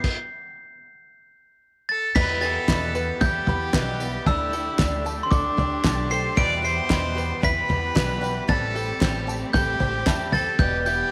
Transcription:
Already playing: glockenspiel C7
0.04 kick, crash
1.89 fiddle A4, glockenspiel A6
2.15 twelve-string acoustic guitar E2 B2 E3 G3 B3 G4, upright bass E2, string section E3 B3 G4, five-string banjo B4, fiddle B4, glockenspiel B6, kick, floor tom, crash
2.41 twelve-string acoustic guitar E3 G3 B3 G4, fiddle A4, five-string banjo E5, glockenspiel A6, tambourine
2.68 twelve-string acoustic guitar E2 B2 E3 G3 B3 G4, upright bass E2, five-string banjo B5, kick, snare, clap, tambourine
2.95 twelve-string acoustic guitar E3 G3 B3 G4, five-string banjo B4, tambourine
3.21 upright bass E2, twelve-string acoustic guitar E3 G3 B3 G4, fiddle G4, five-string banjo E5, glockenspiel G6, kick, floor tom, tambourine
3.47 upright bass E2, twelve-string acoustic guitar E3 G3 B3 G4, five-string banjo B5, floor tom, tambourine
3.73 upright bass B1, twelve-string acoustic guitar E2 B2 E3 G3 B3 G4, five-string banjo B4, kick, snare, clap, tambourine
4.00 twelve-string acoustic guitar E3 G3 B3 G4, five-string banjo E5, tambourine
4.26 upright bass D2, twelve-string acoustic guitar D3 A3 D4 G4, string section D3 A3, fiddle E4, five-string banjo A5, glockenspiel E6, kick, floor tom
4.53 twelve-string acoustic guitar A3 D4 G4, five-string banjo A4, tambourine
4.79 upright bass D2, twelve-string acoustic guitar D3 A3 D4 G4, five-string banjo D5, kick, snare, clap, tambourine
5.05 twelve-string acoustic guitar A3 D4 G4, five-string banjo A5, tambourine
5.23 fiddle C4, glockenspiel C6
5.31 upright bass D2, twelve-string acoustic guitar D3 A3 D4 G4, fiddle D4, five-string banjo A4, glockenspiel D6, kick, floor tom, tambourine
5.57 upright bass D2, twelve-string acoustic guitar A3 D4 G4, five-string banjo D5, floor tom, tambourine
5.84 upright bass B1, twelve-string acoustic guitar D3 A3 D4 G4, five-string banjo A5, kick, snare, clap, tambourine
6.10 twelve-string acoustic guitar A3 D4 G4, five-string banjo A4, fiddle C5, glockenspiel C7, tambourine
6.37 twelve-string acoustic guitar E2 B2 E3 G3 B3 G4, upright bass E2, string section B2 E3, five-string banjo G4, fiddle D5, glockenspiel D7, kick, floor tom
6.62 twelve-string acoustic guitar E3 G3 B3 G4, fiddle C5, five-string banjo E5, glockenspiel C7, tambourine
6.89 twelve-string acoustic guitar E2 B2 E3 G3 B3 G4, upright bass E2, five-string banjo G5, kick, snare, clap, tambourine
7.15 twelve-string acoustic guitar E3 G3 B3 G4, five-string banjo B4, tambourine
7.42 upright bass E2, twelve-string acoustic guitar E3 G3 B3 G4, fiddle B4, five-string banjo E5, glockenspiel B6, kick, floor tom, tambourine
7.68 upright bass E2, twelve-string acoustic guitar E3 G3 B3 G4, five-string banjo B5, floor tom, tambourine
7.95 upright bass B1, twelve-string acoustic guitar E2 B2 E3 G3 B3 G4, five-string banjo B4, kick, snare, clap, tambourine
8.21 twelve-string acoustic guitar E3 G3 B3 G4, five-string banjo E5, tambourine
8.48 upright bass A1, twelve-string acoustic guitar A2 E3 G3 C4 G4, string section A3 C4 G4, fiddle A4, five-string banjo A5, glockenspiel A6, kick, floor tom, tambourine
8.75 twelve-string acoustic guitar G3 C4 G4, five-string banjo A4, tambourine
9.01 upright bass A1, twelve-string acoustic guitar A2 E3 G3 C4 G4, five-string banjo C5, kick, snare, clap, tambourine
9.27 twelve-string acoustic guitar G3 C4 G4, five-string banjo A5, tambourine
9.53 upright bass A1, twelve-string acoustic guitar E3 G3 C4 G4, fiddle G4, five-string banjo A4, glockenspiel G6, kick, floor tom, tambourine
9.80 upright bass A1, twelve-string acoustic guitar G3 C4 G4, five-string banjo C5, floor tom, tambourine
10.06 upright bass E2, twelve-string acoustic guitar A2 E3 G3 C4 G4, five-string banjo A5, kick, snare, clap, tambourine
10.32 twelve-string acoustic guitar G3 C4 G4, five-string banjo A4, fiddle A4, glockenspiel A6, floor tom, tambourine
10.59 upright bass E1, twelve-string acoustic guitar E2 B2 E3 G3 B3 G4, string section E3 B3, fiddle G4, five-string banjo B4, glockenspiel G6, kick, floor tom
10.84 twelve-string acoustic guitar E3 G3 B3 G4, fiddle G4, five-string banjo E5, glockenspiel G6, tambourine

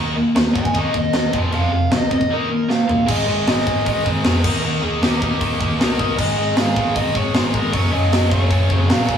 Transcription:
Already playing: picked electric bass D#2, distorted electric guitar D#3 A#3 D#4
0.16 distorted electric guitar D#3 A#3
0.35 picked electric bass D#2, distorted electric guitar D#3 A#3, snare, crash
0.54 picked electric bass D#2, distorted electric guitar D#3 A#3, overdriven electric guitar D#5 G#5, kick
0.65 kick
0.74 picked electric bass D#2, distorted electric guitar D#3 A#3 D#4, kick, crash
0.78 overdriven electric guitar F#4 D#5
0.94 picked electric bass D#2, distorted electric guitar D#3 A#3, kick
0.99 overdriven electric guitar D#5
1.13 picked electric bass D#2, distorted electric guitar D#3 A#3, snare, crash
1.33 picked electric bass F1, distorted electric guitar F2 C3 F3, kick
1.51 picked electric bass F1, distorted electric guitar F2 C3 F3, overdriven electric guitar F5, crash
1.72 picked electric bass F1, distorted electric guitar F2 C3
1.90 picked electric bass D2, distorted electric guitar F2 C3, snare, crash
1.96 overdriven electric guitar D#5
2.10 distorted electric guitar F2 C3, overdriven electric guitar D#5, kick
2.21 kick
2.30 distorted electric guitar D#3 A#3 D#4, overdriven electric guitar A#4
2.49 distorted electric guitar D#3 A#3
2.68 distorted electric guitar D#3 A#3, overdriven electric guitar F5, snare
2.88 distorted electric guitar D#3 A#3, floor tom
3.06 picked electric bass G#1, distorted electric guitar G#2 D#3 G#3, overdriven electric guitar D#5, kick, crash
3.26 picked electric bass G#1, distorted electric guitar G#2 D#3 G#3
3.46 picked electric bass G#1, distorted electric guitar G#2 D#3 G#3, overdriven electric guitar D#5, snare, open hi-hat
3.66 picked electric bass G#1, distorted electric guitar G#2 D#3 G#3, kick
3.84 picked electric bass G#1, distorted electric guitar G#2 D#3 G#3, kick, open hi-hat
3.90 overdriven electric guitar D#5
4.04 picked electric bass G#1, distorted electric guitar G#2 D#3 G#3, overdriven electric guitar C5, kick
4.23 picked electric bass F2, distorted electric guitar G#2 D#3 G#3, snare, open hi-hat
4.44 picked electric bass D#2, distorted electric guitar D#3 A#3 D#4, overdriven electric guitar A#4, kick, crash
4.63 picked electric bass D#2, distorted electric guitar D#3 A#3 D#4, overdriven electric guitar A#4
4.82 picked electric bass D#2, distorted electric guitar D#3 A#3 D#4, overdriven electric guitar G#4
5.01 picked electric bass D#2, distorted electric guitar D#3 A#3 D#4, overdriven electric guitar G4, snare, open hi-hat
5.22 picked electric bass D#2, distorted electric guitar D#3 A#3 D#4, overdriven electric guitar G4, kick
5.40 picked electric bass D#2, distorted electric guitar D#3 A#3 D#4, kick, open hi-hat
5.59 picked electric bass D#2, distorted electric guitar D#3 A#3 D#4, kick
5.79 picked electric bass C#2, distorted electric guitar D#3 A#3 D#4, overdriven electric guitar A#4, snare, open hi-hat
5.98 distorted electric guitar D#3 A#3 D#4, kick
6.17 picked electric bass G#1, distorted electric guitar G#2 D#3 G#3, overdriven electric guitar D#5, kick, crash
6.37 picked electric bass G#1, distorted electric guitar G#2 D#3 G#3
6.55 picked electric bass G#1, distorted electric guitar G#2 D#3 G#3, overdriven electric guitar F5, snare, open hi-hat
6.76 picked electric bass G#1, distorted electric guitar G#2 D#3 G#3, kick
6.96 picked electric bass G#1, distorted electric guitar G#2 D#3 G#3, overdriven electric guitar D#5, kick, open hi-hat
7.14 picked electric bass G#1, distorted electric guitar G#2 D#3 G#3, overdriven electric guitar C#5, kick
7.33 picked electric bass G#1, distorted electric guitar G#2 D#3 G#3, overdriven electric guitar C5, snare, open hi-hat
7.54 picked electric bass G#1, distorted electric guitar G#2 D#3 G#3, overdriven electric guitar A#4, kick
7.72 picked electric bass F#1, distorted electric guitar F#2 C#3 F#3, overdriven electric guitar C#5, kick, open hi-hat
7.91 picked electric bass F#1, distorted electric guitar F#2 C#3 F#3, overdriven electric guitar D#5
8.11 picked electric bass F#1, distorted electric guitar F#2 C#3 F#3, snare, open hi-hat
8.31 picked electric bass F#1, distorted electric guitar F#2 C#3 F#3, overdriven electric guitar C#5, kick
8.50 picked electric bass F#1, distorted electric guitar F#2 C#3 F#3, kick, open hi-hat
8.70 picked electric bass F#1, distorted electric guitar F#2 C#3 F#3, overdriven electric guitar C5, kick
8.88 picked electric bass A#1, distorted electric guitar F#2 C#3 F#3, overdriven electric guitar F5, snare, open hi-hat
9.07 distorted electric guitar F#2 C#3 F#3, kick

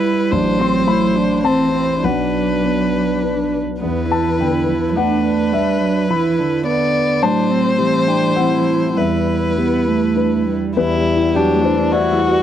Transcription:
Already playing: cello G3, grand piano D4 B4 E5, viola E4, violin B4
0.31 grand piano A1, cello F#3, viola D4, violin C5
0.59 viola C4, grand piano C6
0.87 grand piano A3 B5, viola E4
1.16 viola D4
1.44 cello E3, grand piano C4 C5 A5, viola C4, violin C5
1.74 viola C4
2.03 grand piano B1 F#5, cello F#3, viola D4, violin B4
2.63 grand piano B3
3.23 grand piano D4 B4
3.81 grand piano E2, cello E3, viola B3, violin B4
4.11 viola E4, grand piano A5
4.39 cello D3, grand piano B3 G5
4.67 cello E3
4.95 cello A3, viola D4, grand piano D4 B4 F#5, violin B4
5.24 viola D4
5.52 cello G3, grand piano E5
5.81 cello F#3
6.09 cello E3, viola E4, grand piano B5
6.39 cello D3
6.67 viola B3, violin D5
7.22 grand piano A2 A5, cello F#3, viola D4, violin C5
7.51 viola C4
7.78 cello E3, grand piano G3, viola C4
8.07 viola D4, grand piano G5
8.36 grand piano C4 C5 F#5, viola E4
8.96 grand piano E2 E5, cello G3, viola E4, violin B4
9.57 grand piano G3, cello B3
9.87 cello A3
10.16 grand piano D4 B4
10.47 cello G3
10.77 grand piano E2 B4, viola G3, violin E4
10.97 grand piano G3
11.16 grand piano E4
11.35 viola F#3, grand piano G3, violin D4, cello G4
11.54 grand piano A3
11.64 viola E3, cello D4, grand piano C5
11.74 grand piano G3
11.92 cello E4, grand piano E4 D5, violin F#4
12.12 grand piano G3
12.21 cello F#4
12.31 grand piano D5

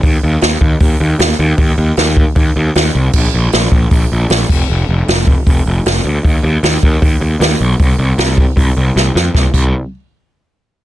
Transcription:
0.03 picked electric bass D#2, kick, open hi-hat
0.23 picked electric bass D#2
0.41 picked electric bass D#2, snare, open hi-hat
0.61 picked electric bass D#2, kick
0.80 picked electric bass D#2, kick, open hi-hat
1.00 picked electric bass D#2
1.19 picked electric bass D#2, snare, open hi-hat
1.39 picked electric bass D#2
1.58 picked electric bass D#2, kick, open hi-hat
1.78 picked electric bass D#2
1.97 picked electric bass D#2, snare, open hi-hat
2.17 kick
2.36 picked electric bass D#2, kick, open hi-hat
2.56 picked electric bass D#2
2.75 picked electric bass D#2, snare, open hi-hat
2.95 picked electric bass C2
3.13 picked electric bass A#1, kick, crash
3.34 picked electric bass A#1
3.52 picked electric bass A#1, snare, open hi-hat
3.72 picked electric bass A#1, kick
3.91 picked electric bass A#1, kick, open hi-hat
4.12 picked electric bass A#1
4.30 picked electric bass A#1, snare, open hi-hat
4.49 picked electric bass F1, kick, crash
4.70 picked electric bass F1
4.89 picked electric bass F1
5.08 picked electric bass F1, snare, open hi-hat
5.27 kick
5.47 picked electric bass F1, kick, open hi-hat
5.66 picked electric bass F1
5.86 picked electric bass F1, snare, open hi-hat
6.04 picked electric bass D2
6.24 picked electric bass D#2, kick, open hi-hat
6.43 picked electric bass D#2
6.63 picked electric bass D#2, snare, open hi-hat
6.83 picked electric bass D#2, kick
7.02 picked electric bass D#2, kick, open hi-hat
7.21 picked electric bass D#2
7.40 picked electric bass D#2, snare, open hi-hat
7.60 picked electric bass B1
7.79 picked electric bass C2, kick, open hi-hat
7.98 picked electric bass C2
8.18 picked electric bass C2, snare, open hi-hat
8.38 kick
8.57 picked electric bass C2, kick, open hi-hat
8.77 picked electric bass C2
8.96 picked electric bass C2, snare
9.15 picked electric bass F2, snare
9.35 picked electric bass C2, kick, snare
9.54 picked electric bass C2, kick, crash

